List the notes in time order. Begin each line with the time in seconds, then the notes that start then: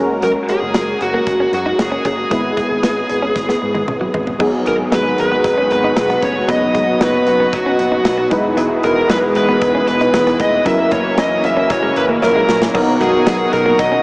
Already playing: F#1 G#3 C#4 F#4 A#4
0.22 F#3 A#4, closed hi-hat
0.36 muted clean electric guitar stroke
0.49 G#3 G#4, closed hi-hat
0.62 F#1
0.74 F#1 F#3, snare, closed hi-hat
1.01 F#1 F#4, muted clean electric guitar stroke, closed hi-hat
1.14 A#3
1.27 F#1, kick, closed hi-hat
1.40 C#4
1.52 F#2 F#4, muted clean electric guitar stroke, closed hi-hat
1.66 D#4
1.79 F#1 G#4, muted clean electric guitar stroke, snare, closed hi-hat
1.92 C#4
2.05 F#1 C#4 G#4, kick, closed hi-hat
2.30 G#1 G#3 B3 E4 B4, kick, closed hi-hat
2.44 muted clean electric guitar stroke
2.57 G#3, kick, closed hi-hat
2.70 G#1
2.83 G#1 B3, snare, closed hi-hat
3.09 G#1, muted clean electric guitar stroke, closed hi-hat
3.22 C#4
3.36 G#1, kick, snare
3.49 B3, snare
3.62 G#2, muted clean electric guitar stroke
3.75 G#3, high tom
3.88 G#1, muted clean electric guitar stroke, mid tom
4.01 F#3
4.14 G#1 G#3, floor tom
4.27 floor tom
4.39 G#1 D#3 F#3 G#3 B3 D#4 F#4 G#4, kick, crash, cowbell
4.53 muted clean electric guitar stroke
4.66 G#1 F#3 A#4, closed hi-hat
4.92 G#1 F#3 B4, snare, closed hi-hat, cowbell
5.18 G#1 B4, muted clean electric guitar stroke, closed hi-hat
5.32 B3
5.44 G#1, kick, closed hi-hat, cowbell
5.58 C#4
5.71 G#1 B4, muted clean electric guitar stroke, closed hi-hat
5.84 D#4
5.96 B1, muted clean electric guitar stroke, snare, closed hi-hat, cowbell
6.10 B3, closed hi-hat
6.22 F1 C#4 C#5, kick, closed hi-hat
6.47 F#1 B2 F#3 B3 D#4 B4 D#5, kick, closed hi-hat, cowbell
6.62 muted clean electric guitar stroke
6.74 F#1 G#3, kick, closed hi-hat
7.01 F#1 F#3 B4, snare, closed hi-hat, cowbell
7.27 F#1, muted clean electric guitar stroke, closed hi-hat
7.40 B3
7.53 F#1 F#4, kick, closed hi-hat, cowbell
7.66 C#4
7.79 F#1, muted clean electric guitar stroke, closed hi-hat
7.92 D#4
8.05 B1, muted clean electric guitar stroke, snare, closed hi-hat, cowbell
8.18 B3
8.30 E1 E3 F#3 G#3 D#4 E4 B4, kick, closed hi-hat
8.57 B3, closed hi-hat, cowbell
8.71 muted clean electric guitar stroke
8.83 E1 G#3 A#4, closed hi-hat
9.10 E1 F#3 B4, snare, closed hi-hat, cowbell
9.35 E1 B4, muted clean electric guitar stroke, closed hi-hat
9.49 B3
9.62 E1, kick, closed hi-hat, cowbell
9.75 C#4
9.88 E1 B4, muted clean electric guitar stroke, closed hi-hat
10.01 D#4, closed hi-hat
10.14 E1, muted clean electric guitar stroke, snare, closed hi-hat, cowbell
10.27 B3, closed hi-hat
10.40 F1 B3 D#5, kick, closed hi-hat
10.65 F#1 C#3 F#3 A#3 C#4 E4 A#4 E5, kick, closed hi-hat, cowbell
10.79 muted clean electric guitar stroke
10.91 F#1 A#3 C#5, kick, closed hi-hat
11.18 F#1 C#4 D#5, snare, closed hi-hat, cowbell
11.44 F#1 E5, muted clean electric guitar stroke, closed hi-hat
11.57 C#4
11.70 F#1 C#5, kick, closed hi-hat, cowbell
11.83 G#3
11.96 F#1 B4, muted clean electric guitar stroke, closed hi-hat
12.09 A#3
12.22 A#1 F#3 C#4 E4 A#4, muted clean electric guitar stroke, snare, cowbell
12.36 G#3
12.49 A#1 F#3, snare
12.62 snare
12.74 B1 B2 D#3 F#3 B3 D#4 F#4 A#4, kick, crash, cowbell
12.88 muted clean electric guitar stroke
13.01 G#3 G#4, closed hi-hat
13.27 B1 F#3 G#4, snare, closed hi-hat, tambourine, cowbell
13.53 B2 A#4, muted clean electric guitar stroke, closed hi-hat
13.66 A#3
13.79 B1 D#5, kick, closed hi-hat, cowbell
13.92 C#4